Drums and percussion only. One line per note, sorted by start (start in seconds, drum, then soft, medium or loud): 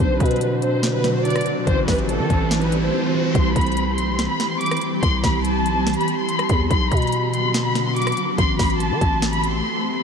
0.20 kick medium
0.20 closed hi-hat medium
0.26 closed hi-hat medium
0.31 closed hi-hat medium
0.36 closed hi-hat soft
0.41 closed hi-hat medium
0.62 closed hi-hat medium
0.83 snare loud
0.83 closed hi-hat medium
1.04 snare medium
1.04 closed hi-hat medium
1.25 closed hi-hat medium
1.30 closed hi-hat medium
1.36 cross-stick loud
1.36 closed hi-hat medium
1.41 closed hi-hat medium
1.46 closed hi-hat medium
1.67 kick loud
1.67 closed hi-hat medium
1.88 kick medium
1.88 snare loud
1.88 closed hi-hat medium
1.88 open hi-hat medium
1.99 closed hi-hat soft
2.09 closed hi-hat medium
2.30 kick loud
2.30 closed hi-hat medium
2.51 snare loud
2.51 closed hi-hat medium
2.61 closed hi-hat soft
2.72 closed hi-hat medium
3.35 kick loud
3.35 closed hi-hat medium
3.56 kick medium
3.56 closed hi-hat medium
3.61 closed hi-hat medium
3.66 closed hi-hat medium
3.72 closed hi-hat soft
3.77 closed hi-hat medium
3.98 closed hi-hat medium
4.19 snare loud
4.19 closed hi-hat medium
4.40 snare medium
4.40 closed hi-hat medium
4.61 closed hi-hat medium
4.66 closed hi-hat medium
4.71 cross-stick loud
4.71 closed hi-hat medium
4.77 closed hi-hat medium
4.81 closed hi-hat medium
5.03 kick loud
5.03 closed hi-hat medium
5.24 kick medium
5.24 snare loud
5.24 closed hi-hat medium
5.45 closed hi-hat medium
5.66 closed hi-hat medium
5.87 snare loud
5.87 closed hi-hat medium
5.94 closed hi-hat medium
6.01 closed hi-hat soft
6.08 closed hi-hat medium
6.29 closed hi-hat medium
6.39 cross-stick loud
6.39 closed hi-hat soft
6.49 kick loud
6.49 closed hi-hat medium
6.71 kick loud
6.71 closed hi-hat medium
6.92 kick medium
6.92 closed hi-hat medium
6.97 closed hi-hat medium
7.02 closed hi-hat medium
7.07 closed hi-hat soft
7.12 closed hi-hat medium
7.34 closed hi-hat medium
7.54 snare loud
7.54 closed hi-hat medium
7.75 snare medium
7.75 closed hi-hat medium
7.96 closed hi-hat medium
8.02 closed hi-hat medium
8.07 cross-stick loud
8.07 closed hi-hat medium
8.12 closed hi-hat medium
8.17 closed hi-hat medium
8.38 kick loud
8.38 closed hi-hat medium
8.59 kick medium
8.59 snare loud
8.59 closed hi-hat medium
8.59 open hi-hat medium
8.70 closed hi-hat soft
8.80 closed hi-hat medium
9.01 kick loud
9.01 closed hi-hat medium
9.22 snare loud
9.22 closed hi-hat medium
9.33 closed hi-hat soft
9.44 closed hi-hat medium